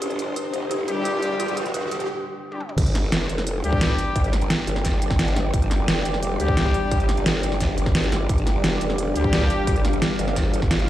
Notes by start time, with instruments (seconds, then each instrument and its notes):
Already playing: ambient pad G3 D4 G4 C5 C6, riser
0.02 wobble bass G1, synth bell G4, closed hi-hat
0.10 closed hi-hat
0.19 closed hi-hat
0.36 synth bell G4, closed hi-hat
0.53 wobble bass F1, closed hi-hat
0.71 synth bell G4, closed hi-hat
0.88 wobble bass A#1, brass ensemble G3 D4 G4, closed hi-hat
1.05 synth bell G4, closed hi-hat
1.22 closed hi-hat
1.40 synth bell G4, closed hi-hat
1.48 brass ensemble G3 D4 G4, closed hi-hat
1.57 synth bell G4, closed hi-hat
1.66 closed hi-hat
1.74 wobble bass F1, synth bell G4, closed hi-hat
1.91 synth bell G4, closed hi-hat
2.00 closed hi-hat
2.52 brass ensemble G3 D4 G4, high tom
2.60 mid tom
2.69 mid tom
2.78 wobble bass G1, ambient pad G3 D4 G4 G5, kick, closed hi-hat, crash
2.86 closed hi-hat
2.95 snare, closed hi-hat
3.12 wobble bass F1, snare, closed hi-hat
3.29 closed hi-hat
3.38 snare
3.47 closed hi-hat
3.64 wobble bass D2, brass ensemble G3 D4 G4, closed hi-hat
3.73 kick
3.81 ambient pad D5, snare, closed hi-hat
3.90 kick
3.98 closed hi-hat
4.16 wobble bass G1, kick, closed hi-hat
4.24 brass ensemble G3 D4 G4, closed hi-hat
4.33 snare, closed hi-hat
4.42 closed hi-hat
4.50 snare, closed hi-hat
4.67 wobble bass G1, closed hi-hat
4.76 snare
4.85 kick, snare, closed hi-hat
5.02 closed hi-hat
5.11 kick, snare
5.19 snare, closed hi-hat
5.28 closed hi-hat
5.36 snare, closed hi-hat
5.54 wobble bass G1, kick, closed hi-hat
5.62 closed hi-hat
5.71 snare, closed hi-hat
5.88 wobble bass F1, snare, closed hi-hat
6.05 closed hi-hat
6.14 snare
6.23 closed hi-hat
6.40 wobble bass D2, brass ensemble G3 D4 G4, closed hi-hat
6.48 kick
6.57 snare, closed hi-hat
6.66 kick
6.74 closed hi-hat
6.91 wobble bass G1, kick, closed hi-hat
7.00 brass ensemble G3 D4 G4, closed hi-hat
7.09 snare, closed hi-hat
7.17 closed hi-hat
7.26 wobble bass G1, snare, closed hi-hat
7.43 closed hi-hat
7.52 snare
7.60 kick, snare, closed hi-hat
7.78 wobble bass G1, closed hi-hat
7.86 kick, snare
7.95 snare, closed hi-hat
8.04 closed hi-hat
8.12 snare, closed hi-hat
8.29 wobble bass G1, ambient pad F5, kick, closed hi-hat
8.38 closed hi-hat
8.47 snare, closed hi-hat
8.64 wobble bass F1, snare, closed hi-hat
8.81 closed hi-hat
8.90 snare
8.98 closed hi-hat
9.16 wobble bass D2, brass ensemble G3 D4 G4, closed hi-hat
9.24 kick
9.33 snare, closed hi-hat
9.42 kick
9.50 closed hi-hat
9.67 wobble bass G1, kick, closed hi-hat
9.76 brass ensemble G3 D4 G4, closed hi-hat
9.85 snare, closed hi-hat
9.93 closed hi-hat
10.02 snare, closed hi-hat
10.19 wobble bass G1, closed hi-hat
10.28 snare
10.36 kick, snare, closed hi-hat
10.54 closed hi-hat
10.62 kick, snare
10.71 snare, closed hi-hat
10.79 closed hi-hat